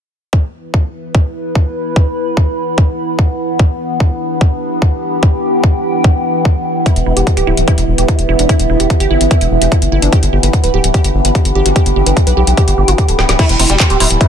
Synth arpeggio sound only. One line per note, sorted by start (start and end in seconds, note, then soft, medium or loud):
6.86 6.90 E4 loud
7.06 7.11 E4 medium
7.17 7.23 G4 medium
7.37 7.44 G4 loud
7.47 7.50 E4 loud
7.68 7.72 E4 loud
7.78 7.84 E4 medium
7.98 8.05 G4 medium
8.09 8.13 E4 medium
8.29 8.31 E4 loud
8.39 8.43 D4 medium
8.49 8.54 E4 loud
8.70 8.74 E4 medium
8.80 8.86 G4 medium
9.00 9.07 G4 loud
9.11 9.13 E4 loud
9.31 9.35 E4 loud
9.41 9.48 E4 medium
9.62 9.68 G4 medium
9.72 9.76 E4 medium
9.92 9.95 E4 loud
10.02 10.07 D4 medium
10.13 10.17 G4 loud
10.33 10.37 G4 medium
10.43 10.50 B4 medium
10.64 10.70 B4 loud
10.74 10.76 G4 loud
10.94 10.99 G4 loud
11.04 11.11 G4 medium
11.25 11.31 B4 medium
11.35 11.39 G4 medium
11.55 11.58 G4 loud
11.66 11.70 F#4 medium
11.76 11.80 G4 loud
11.96 12.01 G4 medium
12.06 12.13 B4 medium
12.27 12.33 B4 loud
12.37 12.40 G4 loud
12.57 12.62 G4 loud
12.68 12.74 G4 medium
12.78 12.80 G4 medium
12.88 12.92 F#4 medium
12.98 13.05 G4 loud
13.08 13.13 A4 medium
13.19 13.21 G5 medium
13.29 13.33 D5 medium
13.39 13.43 E4 loud
13.60 13.64 E4 medium
13.70 13.76 G4 medium
13.90 13.97 G4 loud
14.00 14.03 E4 loud
14.21 14.25 E4 loud